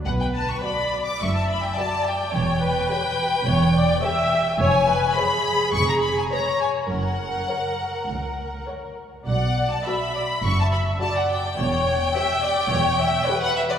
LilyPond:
<<
  \new Staff \with { instrumentName = "Violin section" } { \time 4/4 \key b \minor \tempo 4 = 105 fis''16 g''16 a''16 cis'''16 b''8. d'''16 cis'''16 a''16 b''16 g''16 a''8 g''8~ | g''1 | gis''4 b''4 cis'''16 ais''16 b''16 gis''16 ais''8 gis''8 | fis''2. r4 |
fis''8. a''16 b''4 cis'''16 a''16 b''8 a''16 fis''16 g''8~ | g''2.~ g''16 fis''16 e''16 d''16 | }
  \new Staff \with { instrumentName = "Viola section" } { \time 4/4 \key b \minor b'4 d''4 e''4 d''4 | cis''8 b'4. cis''8 d''8 e''4 | cis''8 b'8 gis'2 cis''4 | ais'2.~ ais'8 r8 |
d''4 e''8 d''8 e''4 d''4 | cis''4 e''8 d''8 cis''8 e''8 b'4 | }
  \new Staff \with { instrumentName = "Violin section" } { \time 4/4 \key b \minor r4 <fis' d''>4 r4 <fis' d''>4 | r4 <g' cis''>4 r4 <g' cis''>4 | r4 <b' cis''>4 r4 <b' cis''>4 | r4 <ais' cis''>4 r4 <ais' cis''>4 |
r4 <fis' d''>4 r4 <fis' d''>4 | r4 <g' cis''>4 r4 <g' cis''>4 | }
  \new Staff \with { instrumentName = "Cello section" } { \clef bass \time 4/4 \key b \minor b,4 r4 fis,4 r4 | e,4 r4 e,4 r4 | eis,4 r4 eis,4 r4 | fis,4 r4 cis,4 r4 |
b,4 r4 fis,4 r4 | e,4 r4 e,4 r4 | }
  \new Staff \with { instrumentName = "Double bass section" } { \clef bass \time 4/4 \key b \minor b,,4 r4 fis,,4 r4 | e,,4 r4 e,,4 r4 | eis,,4 r4 eis,,4 r4 | fis,,4 r4 cis,4 r4 |
b,,4 r4 fis,,4 r4 | e,,4 r4 e,,4 r4 | }
>>